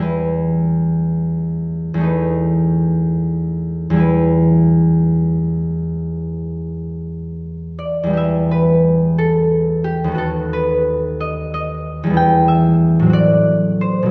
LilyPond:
<<
  \new Staff \with { instrumentName = "Harp" } { \time 6/8 \key e \minor \tempo 4. = 60 r2. | r2. | r2. | r2 r8 d''8 |
e''8 b'4 a'4 g'8 | a'8 b'4 dis''8 dis''4 | g''8 e''4 d''4 c''8 | }
  \new Staff \with { instrumentName = "Harp" } { \time 6/8 \key e \minor <e, g e' b'>2. | <e, a dis' b'>2. | <e, g e' b'>2.~ | <e, g e' b'>2. |
<e, g b g'>2. | <dis, a b fis'>2. | <e, g b e'>4. <a, fis c' fis'>4. | }
>>